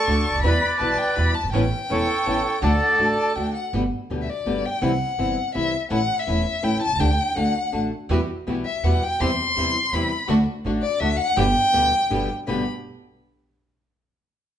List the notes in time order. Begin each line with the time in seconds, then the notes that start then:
Already playing: A4 D5 C#6
0.06 D2 D3 A3 D4 F#4 A4
0.30 C#2
0.35 D2
0.39 D#2 B5
0.43 E2 B2 E3 G3 B3 E4 G4 B4 D5
0.80 B1 B2 E3 G3 B3 E4 G4 B4 A5
0.98 G5
1.16 E2 B2 E3 G3 B3 E4 G4 B4 B5
1.34 A5
1.39 F#1
1.44 G1
1.49 G#1 G5
1.53 A1 E3 B3 C#4 E4 A4 B4
1.89 E1 E3 B3 C#4 E4 A4 B4 C#5
2.25 A1 E3 B3 C#4 E4 A4 B4
2.61 D2 D3 A3 D4 F#4 A4 D5 F#5
2.98 A1 D3 A3 D4 F#4 A4 A5
3.35 D2 D3 A3 D4 F#4 A4 G5
3.54 F#5
3.73 G1 B2 D3 G3 B3 G4
4.10 D2 B2 D3 G3 B3 G4
4.22 E5
4.30 D5
4.46 G1 B2 D3 G3 B3 G4
4.65 G5
4.82 C2 C3 E3 G3 C4 E4 F#5
5.18 G1 C3 E3 G3 C4 E4
5.55 C2 C3 E3 G3 C4 E4 E5
5.90 A1 E3 A3 C#4 E4 F#5
6.19 E5
6.27 E1 E3 A3 C#4 E4
6.62 A1 E3 A3 C#4 E4 G5
6.82 A5
6.86 B1
6.91 C2
6.96 C#2 D3
7.00 D2 A3 D4 G4 G5
7.35 D2 D3 A3 D4 F#4 F#5
7.72 A1 D3 A3 D4 F#4
8.09 E2 B2 E3 G3 B3 E4 F#4 G4
8.47 B1 B2 E3 G3 B3 E4 F#4 G4
8.65 E5
8.83 E2 B2 E3 G3 B3 E4 F#4 G4 F#5
9.03 G5
9.20 E2 C3 E3 G3 C4 E4 G4 C6
9.56 E2 C3 E3 G3 C4 E4 G4
9.92 E2 C3 E3 G3 C4 E4 G4 B5
10.27 D2 D3 A3 D4 F#4
10.64 A1 D3 A3 D4 F#4
10.82 D5
11.00 D2 D3 A3 D4 F#4 E5
11.17 F#5
11.36 G1 B2 D3 G3 B3 D4 G4 G5
11.73 D2 B2 D3 G3 B3 D4 G4
12.10 G1 B2 D3 G3 B3 D4 G4
12.47 G1 G2 B2 D3 G3 B3 D4 G4 B5